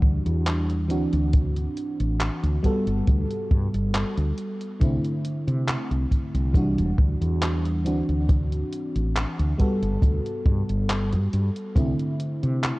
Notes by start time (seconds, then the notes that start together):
Already playing: E3 G3 D4 F#4
0.02 D2, kick
0.26 E2, closed hi-hat
0.47 clap, closed hi-hat
0.70 closed hi-hat
0.89 D2 E3 C4 D4 F#4, closed hi-hat
1.13 D2, closed hi-hat
1.33 kick, closed hi-hat
1.57 closed hi-hat
1.77 closed hi-hat
2.00 A1, closed hi-hat
2.20 clap, closed hi-hat
2.43 D2, closed hi-hat
2.63 G3 B3 F#4 A4, kick, closed hi-hat
2.87 G1, closed hi-hat
3.07 D2, kick, closed hi-hat
3.30 closed hi-hat
3.51 G2, kick
3.74 G1, closed hi-hat
3.94 clap, closed hi-hat
4.17 D2, closed hi-hat
4.38 closed hi-hat
4.61 closed hi-hat
4.80 C2 D3 A3 C4 E4, kick, closed hi-hat
5.04 closed hi-hat
5.25 closed hi-hat
5.48 C3, closed hi-hat
5.68 clap, closed hi-hat
5.91 C2, closed hi-hat
6.11 kick, closed hi-hat
6.34 C2, closed hi-hat
6.54 E3 G3 D4 F#4, kick, closed hi-hat
6.78 E1, closed hi-hat
6.98 D2, kick
7.21 E2, closed hi-hat
7.42 clap, closed hi-hat
7.65 closed hi-hat
7.84 D2 E3 C4 D4 F#4, closed hi-hat
8.08 D2, closed hi-hat
8.29 kick, closed hi-hat
8.52 closed hi-hat
8.72 closed hi-hat
8.95 A1, closed hi-hat
9.16 clap, closed hi-hat
9.39 D2, closed hi-hat
9.58 G3 B3 F#4 A4, kick, closed hi-hat
9.82 G1, closed hi-hat
10.02 D2, kick, closed hi-hat
10.26 closed hi-hat
10.46 G2, kick
10.69 G1, closed hi-hat
10.90 clap, closed hi-hat
11.13 G2, closed hi-hat
11.33 G2, closed hi-hat
11.56 closed hi-hat
11.75 C2 D3 A3 C4 E4, kick, closed hi-hat
12.00 closed hi-hat
12.20 closed hi-hat
12.43 C3, closed hi-hat
12.64 clap, closed hi-hat